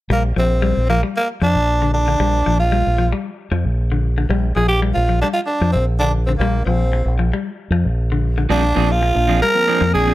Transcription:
0.10 fingered electric bass A#1, clean electric guitar G3, tenor saxophone A#3
0.36 fingered electric bass A#1, clean electric guitar F3, tenor saxophone C4
0.62 clean electric guitar G3
0.77 fingered electric bass A#1
0.90 clean electric guitar F3, tenor saxophone A#3
1.03 clean electric guitar G3
1.17 tenor saxophone A#3
1.41 fingered electric bass F2, clean electric guitar F3, tenor saxophone D4
1.55 fingered electric bass A#1
1.82 clean electric guitar D3
1.93 tenor saxophone D4
2.08 clean electric guitar D3
2.20 fingered electric bass A#1, clean electric guitar G3
2.46 fingered electric bass A#1, clean electric guitar F3
2.59 tenor saxophone F4
2.72 clean electric guitar G3
2.87 fingered electric bass A#1
2.98 clean electric guitar F3
3.12 clean electric guitar G3
3.51 fingered electric bass F2, clean electric guitar F3
3.65 fingered electric bass A#1
3.92 clean electric guitar D3
4.18 clean electric guitar D3
4.29 fingered electric bass A#1, clean electric guitar G3
4.56 fingered electric bass A#1, clean electric guitar F3, tenor saxophone G#4
4.68 tenor saxophone G4
4.82 clean electric guitar G3
4.94 fingered electric bass A#1, tenor saxophone F4
5.09 clean electric guitar F3
5.21 clean electric guitar G3, tenor saxophone D4
5.33 tenor saxophone F4
5.46 tenor saxophone D4
5.61 fingered electric bass F2, clean electric guitar F3
5.72 fingered electric bass A#1, tenor saxophone C4
5.99 clean electric guitar D3, tenor saxophone D4
6.26 clean electric guitar D3, tenor saxophone C4
6.38 fingered electric bass A#1, clean electric guitar G3, tenor saxophone A#3
6.65 fingered electric bass A#1, clean electric guitar F3, tenor saxophone C4
6.93 muted clean electric guitar stroke
7.05 fingered electric bass A#1
7.19 clean electric guitar F3
7.33 clean electric guitar G3
7.70 fingered electric bass F2, clean electric guitar F3
7.85 fingered electric bass A#1
8.12 clean electric guitar D3
8.38 clean electric guitar D3
8.49 fingered electric bass A#1, clean electric guitar F3 G3 C4 D4 G#4, tine electric piano F3 A#3 D4, tenor saxophone D4
8.63 muted clean electric guitar stroke
8.75 fingered electric bass A#1, tine electric piano F3 A#3 D4, clean electric guitar F3 C4 G#4
8.89 tenor saxophone F4, muted clean electric guitar stroke
9.01 muted clean electric guitar stroke
9.15 fingered electric bass A#1, tine electric piano F3 A#3 D4, muted clean electric guitar stroke
9.27 clean electric guitar F3 C4 D4 G#4
9.42 clean electric guitar G3, tenor saxophone A#4, muted clean electric guitar stroke
9.54 tine electric piano F3 A#3 C4, muted clean electric guitar stroke
9.68 clean electric guitar F3 C4 D4 G#4
9.81 fingered electric bass F2, clean electric guitar F3
9.94 fingered electric bass A#1, clean electric guitar C4 D4 G#4, tenor saxophone G#4
10.07 clean electric guitar F3 C4 D4, muted clean electric guitar stroke

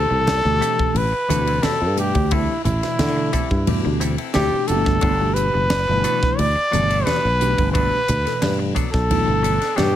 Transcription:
Already playing: tine electric piano B2 E3 A3 D4 G4, trumpet A4
0.10 fretless electric bass C2, muted clean electric guitar stroke
0.26 muted clean electric guitar stroke, snare, ride, high conga
0.44 fretless electric bass D2, tine electric piano B2 E3 A3 D4 G4, muted clean electric guitar stroke
0.61 clean electric guitar G3 C4 E4 A4, hi-hat pedal, ride
0.78 muted clean electric guitar stroke, muted fretless electric bass stroke, kick
0.95 fretless electric bass A1, trumpet B4, ride, muted conga
1.12 muted clean electric guitar stroke, muted fretless electric bass stroke
1.28 fretless electric bass D2, tine electric piano B2 E3 A3 D4 F#4, clean electric guitar G3 C4 E4 A4, hi-hat pedal, ride, high conga
1.46 clean electric guitar C4 E4 A4, ride
1.62 clean electric guitar G3 C4 E4 A4, trumpet A4, muted fretless electric bass stroke, snare, ride, high conga
1.82 fretless electric bass G2
1.96 tine electric piano B2 E3 A3 D4 G4, trumpet G4, muted clean electric guitar stroke, hi-hat pedal, ride, muted conga
2.14 fretless electric bass D2, muted clean electric guitar stroke, kick, ride
2.31 clean electric guitar G3 C4 E4 A4, trumpet E4, kick, ride, muted conga
2.65 fretless electric bass A1, trumpet E4, muted clean electric guitar stroke, hi-hat pedal, ride, muted conga, low conga
2.83 tine electric piano B2 E3 A3 D4 E4, muted clean electric guitar stroke, snare, ride
2.99 fretless electric bass D3, muted clean electric guitar stroke, snare, ride, high conga
3.17 muted clean electric guitar stroke
3.33 clean electric guitar G3 C4 E4 A4, kick, hi-hat pedal, ride
3.51 fretless electric bass G2, muted clean electric guitar stroke, kick
3.67 tine electric piano B2 E3 A3 D4 G4, ride, muted conga, high conga, low conga
3.85 fretless electric bass D2, muted clean electric guitar stroke
4.00 clean electric guitar G3 C4 E4 A4, hi-hat pedal, ride
4.18 clean electric guitar C4 E4 A4, ride
4.34 fretless electric bass D2, tine electric piano B2 E3 A3 D4 G4, clean electric guitar G3 C4 E4 A4, trumpet G4, snare, ride, high conga
4.54 muted fretless electric bass stroke
4.67 fretless electric bass G1, tine electric piano B2 E3 A3 D4 G4, trumpet A4, muted clean electric guitar stroke, hi-hat pedal, ride, muted conga
4.85 muted clean electric guitar stroke, kick, snare
5.01 fretless electric bass G1, clean electric guitar F#3 B3 D4 A4, kick, ride, muted conga
5.20 tine electric piano B2 E3 A3 D4 G4
5.34 trumpet B4, muted clean electric guitar stroke, hi-hat pedal, ride, muted conga
5.54 fretless electric bass F#1, muted clean electric guitar stroke
5.70 muted clean electric guitar stroke, snare, ride, high conga
5.87 fretless electric bass G1, tine electric piano B2 E3 A3 D4 E4, muted clean electric guitar stroke
6.04 clean electric guitar F#3 B3 D4 A4, hi-hat pedal, ride
6.22 muted clean electric guitar stroke, muted fretless electric bass stroke, kick, snare
6.38 fretless electric bass D2, trumpet D5, ride, muted conga
6.56 muted clean electric guitar stroke, muted fretless electric bass stroke
6.71 fretless electric bass G1, tine electric piano B2 E3 A3 D4 G4, clean electric guitar F#3 B3 D4 A4, hi-hat pedal, ride, high conga
6.89 clean electric guitar B3 D4 A4, ride
7.04 clean electric guitar F#3 B3 D4 A4, trumpet B4, snare, ride, high conga
7.25 fretless electric bass B1
7.40 tine electric piano B2 E3 A3 D4 G4, muted clean electric guitar stroke, hi-hat pedal, ride, muted conga
7.58 fretless electric bass G1, muted clean electric guitar stroke, kick, ride
7.72 clean electric guitar F#3 B3 D4 A4, trumpet B4, kick, ride, muted conga
8.08 fretless electric bass D2, muted clean electric guitar stroke, hi-hat pedal, ride, muted conga, low conga
8.25 tine electric piano B2 E3 A3 D4 A4, muted clean electric guitar stroke, snare, ride
8.41 fretless electric bass G2, muted clean electric guitar stroke, snare, ride, high conga
8.59 muted clean electric guitar stroke
8.75 clean electric guitar F#3 B3 D4 A4, kick, hi-hat pedal, ride
8.92 fretless electric bass B1, trumpet A4, muted clean electric guitar stroke, kick, snare
9.10 tine electric piano B2 E3 A3 D4 E4, ride, muted conga, high conga, low conga
9.26 fretless electric bass G1, muted clean electric guitar stroke
9.43 clean electric guitar F#3 B3 D4 A4, hi-hat pedal, ride
9.59 clean electric guitar B3 D4 A4, snare, ride
9.76 fretless electric bass G2, tine electric piano B2 E3 A3 D4 G4, clean electric guitar F#3 B3 D4 A4, trumpet G4, snare, ride, high conga

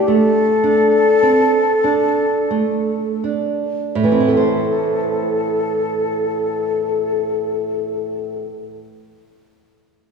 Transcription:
Already playing: nylon-string guitar D4
0.07 nylon-string guitar A3, flute A4
0.64 nylon-string guitar D4
1.23 nylon-string guitar C4
1.84 nylon-string guitar D4
2.50 nylon-string guitar A3
3.24 nylon-string guitar D4
3.95 nylon-string guitar A2, flute A4
4.04 nylon-string guitar E3
4.12 nylon-string guitar C4
4.20 nylon-string guitar E4
4.28 nylon-string guitar A4
4.37 nylon-string guitar C5

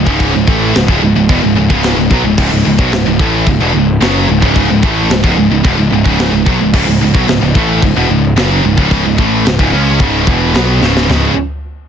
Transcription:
0.06 picked electric bass C#1, distorted electric guitar C#2 G#2 C#3, kick
0.20 kick, china
0.34 picked electric bass C#1, distorted electric guitar C#2 G#2
0.47 picked electric bass A1, distorted electric guitar A2 E3 A3, kick
0.74 picked electric bass C#1, distorted electric guitar C#2 G#2, snare, china
0.88 picked electric bass C#1, distorted electric guitar C#2 G#2, kick
1.02 picked electric bass C#1, distorted electric guitar C#2 G#2
1.15 picked electric bass C#1, distorted electric guitar C#2 G#2
1.29 picked electric bass E1, distorted electric guitar E2 B2, kick, china
1.43 picked electric bass C#1, distorted electric guitar C#2 G#2
1.56 picked electric bass C#1, distorted electric guitar C#2 G#2
1.70 picked electric bass C#1, distorted electric guitar C#2 G#2 C#3, kick
1.83 snare, china
1.96 picked electric bass C#1, distorted electric guitar C#2 G#2
2.10 picked electric bass B1, distorted electric guitar B2 F#3, kick
2.24 picked electric bass C#1, distorted electric guitar C#2 G#2
2.38 picked electric bass C#1, distorted electric guitar C#2 G#2, kick, crash, china
2.51 picked electric bass C#1, distorted electric guitar C#2 G#2
2.65 picked electric bass C#1, distorted electric guitar C#2 G#2
2.78 picked electric bass B1, distorted electric guitar B2 F#3, kick
2.92 picked electric bass C#1, distorted electric guitar C#2 G#2, snare, china
3.06 picked electric bass C#1, distorted electric guitar C#2 G#2
3.19 picked electric bass A1, distorted electric guitar A2 E3 A3, kick
3.46 picked electric bass C#1, distorted electric guitar C#2 G#2, kick, china
3.60 picked electric bass E1, distorted electric guitar E2 B2
3.74 picked electric bass C#1, distorted electric guitar C#2 G#2
4.01 picked electric bass F#1, distorted electric guitar F#2 C#3 F#3, snare, china
4.29 picked electric bass C#1, distorted electric guitar C#2 G#2
4.42 picked electric bass C#1, distorted electric guitar C#2 G#2 C#3, kick
4.56 kick, china
4.70 picked electric bass C#1, distorted electric guitar C#2 G#2
4.83 picked electric bass A1, distorted electric guitar A2 E3 A3, kick
5.10 picked electric bass C#1, distorted electric guitar C#2 G#2, snare, china
5.24 picked electric bass C#1, distorted electric guitar C#2 G#2, kick
5.37 picked electric bass C#1, distorted electric guitar C#2 G#2
5.50 picked electric bass C#1, distorted electric guitar C#2 G#2
5.64 picked electric bass E1, distorted electric guitar E2 B2, kick, china
5.77 picked electric bass C#1, distorted electric guitar C#2 G#2
5.91 picked electric bass C#1, distorted electric guitar C#2 G#2
6.06 picked electric bass C#1, distorted electric guitar C#2 G#2 C#3, kick
6.19 snare, china
6.32 picked electric bass C#1, distorted electric guitar C#2 G#2
6.46 picked electric bass B1, distorted electric guitar B2 F#3, kick
6.60 picked electric bass C#1, distorted electric guitar C#2 G#2
6.73 picked electric bass C#1, distorted electric guitar C#2 G#2, kick, crash, china
6.87 picked electric bass C#1, distorted electric guitar C#2 G#2
7.00 picked electric bass C#1, distorted electric guitar C#2 G#2
7.14 picked electric bass B1, distorted electric guitar B2 F#3, kick
7.27 picked electric bass C#1, distorted electric guitar C#2 G#2, snare, china
7.41 picked electric bass C#1, distorted electric guitar C#2 G#2
7.55 picked electric bass A1, distorted electric guitar A2 E3 A3, kick
7.82 picked electric bass C#1, distorted electric guitar C#2 G#2, kick, china
7.95 picked electric bass E1, distorted electric guitar E2 B2
8.09 picked electric bass C#1, distorted electric guitar C#2 G#2
8.36 picked electric bass F#1, distorted electric guitar F#2 C#3 F#3, snare, china
8.63 picked electric bass C#1, distorted electric guitar C#2 G#2
8.77 picked electric bass C#1, distorted electric guitar C#2 G#2 C#3, kick
8.91 kick, china
9.05 picked electric bass C#1, distorted electric guitar C#2 G#2
9.18 picked electric bass A1, distorted electric guitar A2 E3 A3, kick
9.45 picked electric bass C#1, distorted electric guitar C#2 G#2, snare, china
9.59 picked electric bass C#1, distorted electric guitar C#2 G#2, kick
9.72 picked electric bass C#2, distorted electric guitar C#3 G#3 C#4
10.00 picked electric bass C#1, distorted electric guitar C#2 G#2 C#3, kick, china
10.27 picked electric bass E1, distorted electric guitar E2 B2 E3, kick
10.54 picked electric bass B1, distorted electric guitar B2 F#3 B3, snare, china
10.81 picked electric bass C#1, distorted electric guitar C#2 G#2 C#3, snare
10.97 snare
11.08 picked electric bass C#1, distorted electric guitar C#2 G#2 C#3, snare, floor tom

